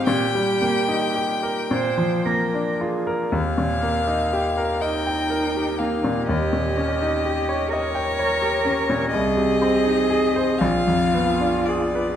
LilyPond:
<<
  \new Staff \with { instrumentName = "Violin" } { \time 6/8 \key ees \major \tempo 4. = 40 g''2~ g''8 r8 | f''4. g''4 f''8 | ees''4. des''4. | ees''4. f''4 d''8 | }
  \new Staff \with { instrumentName = "Cello" } { \time 6/8 \key ees \major g'4. c''8 bes'8 aes'8 | r4. ees'4. | g'4. bes'4. | aes'4. f'4. | }
  \new Staff \with { instrumentName = "Grand piano" } { \time 6/8 \key ees \major bes,16 g16 bes16 ees'16 g'16 bes'16 bes,16 f16 bes16 d'16 f'16 bes'16 | ees,16 bes,16 bes16 ees'16 g'16 bes'16 ees''16 g''16 bes'16 g'16 bes16 bes,16 | ees,16 bes,16 des'16 ees'16 g'16 des''16 ees''16 g''16 des''16 g'16 des'16 bes,16 | c,16 c16 c'16 ees'16 aes'16 c''16 bes,,16 f,16 ces'16 d'16 aes'16 ces''16 | }
>>